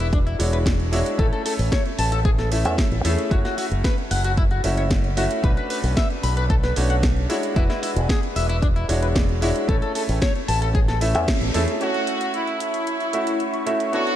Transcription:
Already playing: E1 G#3 D4 E4 F#4 B4
0.00 closed hi-hat
0.13 D4, kick, closed hi-hat
0.27 E4, closed hi-hat
0.39 E1 G#3 D4 E4 F#4 C#5, open hi-hat
0.53 B4, closed hi-hat
0.66 kick, snare, closed hi-hat
0.80 closed hi-hat
0.92 G#3 D4 E4 F#4 C#5, open hi-hat
1.06 closed hi-hat
1.18 A1 A3 C#4 E4 A4 C#5, kick, closed hi-hat
1.33 A4, closed hi-hat
1.46 A4, open hi-hat
1.59 A1, open hi-hat
1.72 C#5, kick, snare, closed hi-hat
1.86 closed hi-hat
1.99 A1 A5, open hi-hat
2.12 A4, closed hi-hat
2.25 G#4, kick, closed hi-hat
2.38 A4, snare, closed hi-hat
2.51 A3 C#4 E4 E5, open hi-hat
2.65 E2 E5, closed hi-hat
2.78 kick, snare, closed hi-hat
2.92 A1, closed hi-hat
3.04 E2 A3 C#4 E4 G#4 A4 E5, open hi-hat
3.18 closed hi-hat
3.30 F#1 A3 C#4 E4 F#4 C#5, kick, closed hi-hat
3.45 F#4, snare, closed hi-hat
3.58 F#4, open hi-hat
3.71 F#1, closed hi-hat
3.84 B4, kick, snare, closed hi-hat
3.98 closed hi-hat
4.11 F#1 F#5, open hi-hat
4.24 F#4, closed hi-hat
4.37 E4, kick, closed hi-hat
4.51 F#4, closed hi-hat
4.64 F#1 A3 C#4 E4 F#4 E5, open hi-hat
4.77 C#5, closed hi-hat
4.91 kick, snare, closed hi-hat
5.04 closed hi-hat
5.17 A3 C#4 E4 F#4 E5, open hi-hat
5.31 closed hi-hat
5.43 B1 A3 C#4 D4 F#4 B4, kick, closed hi-hat
5.57 B4, closed hi-hat
5.70 B4, open hi-hat
5.84 B1, open hi-hat
5.97 E5, kick, snare, closed hi-hat
6.10 closed hi-hat
6.23 B1 B5, open hi-hat
6.37 B4, closed hi-hat
6.50 A4, kick, closed hi-hat
6.63 B4, snare, closed hi-hat
6.76 B1 A3 C#4 D4 F#4 C#5, open hi-hat
6.90 F#5, closed hi-hat
7.03 kick, snare, closed hi-hat
7.17 closed hi-hat
7.29 G#3 D4 E4 F#4 C#5, open hi-hat
7.43 closed hi-hat
7.55 E1 G#3 D4 E4 F#4 B4, kick, closed hi-hat
7.70 E4, snare, closed hi-hat
7.83 E4, open hi-hat
7.96 E1, closed hi-hat
8.09 G#4, kick, snare, closed hi-hat
8.23 closed hi-hat
8.36 E1 E5, open hi-hat
8.49 E4, closed hi-hat
8.62 D4, kick, closed hi-hat
8.76 E4, closed hi-hat
8.88 E1 G#3 D4 E4 F#4 C#5, open hi-hat
9.03 B4, closed hi-hat
9.16 kick, snare, closed hi-hat
9.29 closed hi-hat
9.42 G#3 D4 E4 F#4 C#5, open hi-hat
9.56 closed hi-hat
9.68 A1 A3 C#4 E4 A4 C#5, kick, closed hi-hat
9.82 A4, closed hi-hat
9.95 A4, open hi-hat
10.09 A1, open hi-hat
10.22 C#5, kick, snare, closed hi-hat
10.36 closed hi-hat
10.48 A1 A5, open hi-hat
10.62 A4, closed hi-hat
10.75 G#4, kick, closed hi-hat
10.88 A4, snare, closed hi-hat
11.01 A3 C#4 E4 E5, open hi-hat
11.15 E2 E5, closed hi-hat
11.28 kick, snare, closed hi-hat
11.41 A1, closed hi-hat
11.54 E2 A3 C#4 E4 G#4 A4 E5, open hi-hat
11.68 closed hi-hat
11.80 A3 C#4 E4 F#4 C#5 C#6, closed hi-hat
11.94 closed hi-hat
12.07 closed hi-hat
12.21 closed hi-hat
12.34 E4, closed hi-hat
12.47 closed hi-hat
12.60 E4, closed hi-hat
12.74 closed hi-hat
12.87 closed hi-hat
13.00 closed hi-hat
13.13 A3 C#4 E4 F#4 E5, closed hi-hat
13.27 closed hi-hat
13.40 closed hi-hat
13.54 closed hi-hat
13.66 A3 C#4 E4 F#4 E5, closed hi-hat
13.80 closed hi-hat
13.92 B3 D4 F#4 A4 C#5, closed hi-hat
14.07 closed hi-hat

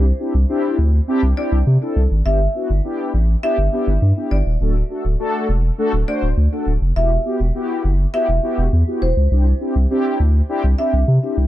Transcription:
Already playing: C2 C5
0.19 C4 D4 E4 G4
0.34 C2
0.49 C4 D4 E4 G4
0.78 D2
1.08 C4 D4 E4 G4
1.23 C2
1.37 C4 D4 E4 G4 D5
1.52 C2
1.67 C3
1.81 C4 D4 E4 A4
1.96 C2
2.11 G#1
2.25 G1 B3 D4 E4 G4 E5
2.55 B3 D4 E4 F#4
2.70 G1
2.84 B3 D4 E4 G4
3.14 A1
3.43 B3 D4 E4 G4 E5
3.58 G1
3.72 B3 D4 E4 G4
3.87 G1
4.02 G2
4.16 B3 D4 E4 G4
4.31 G1 D5
4.46 D#1
4.60 D1 A3 D4 F#4 A4
4.90 A3 D4 F#4 A4
5.05 D1
5.19 A3 D4 F#4 A4
5.49 E1
5.78 A3 D4 F#4 A4
5.93 D1
6.08 A3 D4 F#4 C5 D5
6.22 D1
6.37 D2
6.52 A3 D4 F#4 A4
6.67 D1
6.81 F1
6.96 E1 B3 E4 F#4 G4 E5
7.25 B3 E4 F#4 G4
7.40 E1
7.55 B3 E4 F#4 G4
7.84 F#1
8.13 B3 E4 F#4 G4 E5
8.29 E1
8.43 B3 E4 F#4 G4
8.58 E1
8.73 E2
8.87 B3 E4 F#4 G4
9.02 E1 C5
9.17 C#2
9.31 C2 C4 D4 E4 G4
9.60 C4 D4 E4 G4
9.76 C2
9.90 C4 D4 E4 G4
10.20 D2
10.49 C4 D4 E4 G4
10.64 C2
10.78 C4 D4 E4 G4 E5
10.93 C2
11.08 C3
11.22 C4 D4 E4 G4
11.37 C2

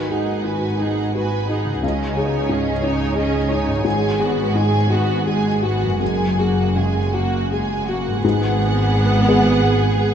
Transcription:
Already playing: G#1 G#2 B3 D#4 F#4 D#5 F#5
0.10 D#4 F#4 G#4 F#5
0.44 D#3 F#4 B4 G#5
0.79 D#4 G#4 F#5
1.14 F#4 B4 G#5
1.49 D#4 G#4 F#5
1.65 C#3
1.69 G#3
1.73 D#4
1.78 G#4
1.82 C#2 C#3 C#4 G#4 D#5
2.15 D#4 G#4 C#5 G#5
2.49 G#2 C#4 G#4 D#5
2.83 D#4 C#5 G#5
3.15 C#4 G#4 D#5
3.50 D#4 C#5 G#5
3.67 G#2
3.71 G#3
3.76 F#4
3.80 B4
3.84 G#1 G#2 G#3 G#4 G#5
4.20 B3 F#4 G#4 F#5
4.55 D#3 G#3 G#4 G#5
4.90 B3 F#4 F#5
5.26 G#3 G#4 G#5
5.62 B3 F#4 F#5
5.82 F#2
5.87 G#3
5.91 F#4
5.96 A#4
6.00 F#1 F#2 G#3 G#4 G#5
6.39 A#3 F#4 G#4 F#5
6.76 C#3 G#3 G#4 G#5
7.14 A#3 F#4 F#5
7.52 G#3 G#4 G#5
7.88 A#3 F#4 F#5
8.06 G#2
8.11 G#3
8.16 F#4
8.20 G#1 B4
8.24 G#2 B3 G#4 F#5
9.28 G#4 B4

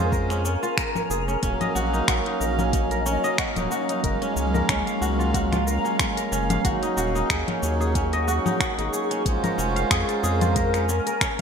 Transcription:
Already playing: F2 G#3 C#4 F4 G#4 A#4 C5 F5 G#5 A#5
0.12 A#4, kick, shaker
0.30 C#4, finger snap, shaker
0.45 C#4, shaker
0.63 F4, shaker
0.77 A#4, finger snap, kick, shaker
0.95 C#5, low conga, shaker
1.10 F1 G#4, shaker
1.28 C#4, shaker
1.41 D#1 F#3 A#3 C#4 D#5, kick, closed hi-hat, shaker
1.45 F5
1.61 D#5, closed hi-hat, low conga, shaker
1.75 A#1 F#4, shaker
1.93 D#4, shaker
2.08 A#1 F#4, finger snap, kick, closed hi-hat, shaker
2.26 D#4, closed hi-hat
2.40 A#1 A#4, shaker
2.59 C#4, low conga, shaker
2.73 C#4, kick, closed hi-hat, shaker
2.91 A#4, closed hi-hat, shaker
3.04 F#3 A#3 C#4 F5, shaker
3.24 D#5, shaker
3.38 F#4, finger snap, kick, closed hi-hat, shaker
3.56 D#1 D#4, closed hi-hat, low conga, shaker
3.71 F#4, shaker
3.89 D#4, closed hi-hat, shaker
4.02 F#1 G#3 A#3 C#4 A#4 F5 A#5, kick, closed hi-hat, shaker
4.06 F5
4.22 C#4, closed hi-hat, shaker
4.36 C#2 C#4, shaker
4.54 A#4, low conga, shaker
4.69 C#2 C#4, finger snap, kick, closed hi-hat, shaker
4.87 F5, closed hi-hat, shaker
5.01 C#2 F#4, shaker
5.19 F4, shaker
5.34 F#4, kick, closed hi-hat, shaker
5.52 F4, finger snap, closed hi-hat, low conga, shaker
5.65 G#3 A#3 C#4 A#4, shaker
5.69 F5
5.85 C#4, shaker
5.99 C#4, finger snap, kick, closed hi-hat, shaker
6.17 A#4, closed hi-hat, shaker
6.32 F#1 C#4, shaker
6.50 F5, closed hi-hat, low conga, shaker
6.63 G#1 F#3 A#3 C#4 D#4 F#4 G#4 F#5 C#6, kick, closed hi-hat, shaker
6.83 D#4, closed hi-hat, shaker
6.97 D#1 F#4, shaker
7.15 D#4, shaker
7.30 D#2 G#4, finger snap, kick, closed hi-hat, shaker
7.48 C#4, closed hi-hat, low conga
7.63 D#2 C#4, shaker
7.80 G#4, shaker
7.95 C#4, kick, closed hi-hat, shaker
8.13 D#5, closed hi-hat, shaker
8.25 F#3 A#3 C#4 F#4, shaker
8.29 D#4
8.46 D#4, low conga, shaker
8.60 F#4, finger snap, kick, closed hi-hat, shaker
8.78 G#1 D#4, closed hi-hat, shaker
8.93 G#4, shaker
9.11 C#4, closed hi-hat, shaker
9.24 A#1 G#3 C#4 A#4 C5 G#5 A#5, kick, closed hi-hat, shaker
9.28 F4
9.44 A#4, closed hi-hat, low conga, shaker
9.58 F1 C#4, shaker
9.76 F5, closed hi-hat, shaker
9.91 F2 G#4, finger snap, kick, closed hi-hat, shaker
10.09 F4, closed hi-hat, shaker
10.23 F2 G#4, shaker
10.41 F4, closed hi-hat, low conga, shaker
10.56 A#4, kick, closed hi-hat, shaker
10.74 C#4, finger snap, closed hi-hat, shaker
10.89 C#4, shaker
11.07 A#4, closed hi-hat, shaker
11.21 C#4, finger snap, kick, closed hi-hat, shaker

